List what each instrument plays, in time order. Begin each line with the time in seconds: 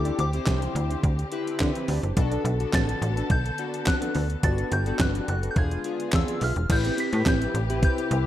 Already playing: fm bass D2, string section D3 C4 G4, analog polysynth C4 E4 G4 A4, synth bell D6
0.05 clean electric guitar D4 G4 D5, closed hi-hat
0.18 fm bass D2, clean electric guitar D4 G4 C5, synth bell D6, closed hi-hat
0.33 analog polysynth C4 E4 G4 C5, muted clean electric guitar stroke, closed hi-hat
0.46 fm bass C2, clean electric guitar D4 G4 C5, kick, snare, clap, closed hi-hat
0.62 closed hi-hat
0.75 fm bass D2, muted clean electric guitar stroke, closed hi-hat
0.90 clean electric guitar D4 G4 C5, closed hi-hat
1.03 fm bass D2, kick, closed hi-hat
1.18 muted clean electric guitar stroke, closed hi-hat
1.32 analog polysynth C4 E4 G4 B4, closed hi-hat
1.46 muted clean electric guitar stroke, closed hi-hat
1.60 fm bass D3, kick, snare, clap, closed hi-hat
1.75 muted clean electric guitar stroke, closed hi-hat
1.88 fm bass D2, clean electric guitar D4 G4 D5, open hi-hat
2.03 fm bass F#1, clean electric guitar D4 G4 C5, closed hi-hat
2.17 fm bass B1, string section D3 B3 A4, analog polysynth B3 D4 F#4 A4, kick, closed hi-hat
2.31 clean electric guitar D4 A4 D5, closed hi-hat
2.45 fm bass B1, clean electric guitar D4 A4 B4, closed hi-hat
2.60 analog polysynth B3 D4 F#4 A4, muted clean electric guitar stroke, closed hi-hat
2.73 fm bass A1, clean electric guitar D4 A4 B4, synth bell A6, kick, snare, clap, closed hi-hat
2.89 muted clean electric guitar stroke, closed hi-hat
3.02 fm bass A1, muted clean electric guitar stroke, closed hi-hat
3.16 clean electric guitar D4 A4 B4, closed hi-hat
3.30 fm bass B1, synth bell G6, kick, closed hi-hat
3.45 muted clean electric guitar stroke, closed hi-hat
3.58 analog polysynth B3 D4 F#4 A4, closed hi-hat
3.73 muted clean electric guitar stroke, closed hi-hat
3.86 synth bell F#6, muted clean electric guitar stroke, kick, snare, clap, closed hi-hat
4.01 clean electric guitar D4 A4 B4, closed hi-hat
4.15 fm bass D2, clean electric guitar D4 A4 D5, open hi-hat
4.30 muted clean electric guitar stroke, closed hi-hat
4.43 fm bass G1, string section G3 F#4, analog polysynth B3 D4 F#4 A4, synth bell A6, muted clean electric guitar stroke, kick, closed hi-hat
4.58 clean electric guitar D4 F#4 D5, closed hi-hat
4.71 fm bass G1, clean electric guitar D4 F#4 B4, synth bell G6, closed hi-hat
4.86 analog polysynth B3 D4 F#4 A4, closed hi-hat
4.99 fm bass G1, clean electric guitar D4 F#4 B4, synth bell F#6, kick, snare, clap, closed hi-hat
5.15 muted clean electric guitar stroke, closed hi-hat
5.28 fm bass F#1, synth bell F#6, muted clean electric guitar stroke, closed hi-hat
5.43 clean electric guitar D4 F#4 B4, closed hi-hat
5.51 synth bell G6
5.56 fm bass E1, string section D3 G#3 F4, analog polysynth B3 D4 F4 G#4, synth bell G#6, kick, closed hi-hat
5.71 muted clean electric guitar stroke, closed hi-hat
5.84 analog polysynth B3 D4 F4 G#4, closed hi-hat
6.00 muted clean electric guitar stroke, closed hi-hat
6.13 fm bass E2, synth bell E6, kick, snare, clap, closed hi-hat
6.28 clean electric guitar F4 G#4 D5, closed hi-hat
6.41 fm bass B1, clean electric guitar F4 G#4 E5, synth bell F6, open hi-hat
6.56 fm bass E1, muted clean electric guitar stroke, closed hi-hat
6.69 fm bass A1, string section C3 G4 B4, analog polysynth C4 E4 G4 B4, synth bell G6, kick, closed hi-hat, crash
6.84 clean electric guitar C4 G4 C5, closed hi-hat
6.97 clean electric guitar C4 G4 B4, synth bell B6, closed hi-hat
7.12 fm bass A2, analog polysynth C4 E4 G4 B4, muted clean electric guitar stroke, closed hi-hat
7.26 fm bass A1, clean electric guitar C4 G4 B4, synth bell G6, kick, snare, clap, closed hi-hat
7.41 muted clean electric guitar stroke, closed hi-hat
7.54 fm bass A1, muted clean electric guitar stroke, closed hi-hat
7.69 analog polysynth C4 E4 G4 B4, clean electric guitar C4 G4 B4, closed hi-hat
7.82 synth bell G6, muted clean electric guitar stroke, kick, closed hi-hat
7.97 muted clean electric guitar stroke, closed hi-hat
8.11 fm bass C2, closed hi-hat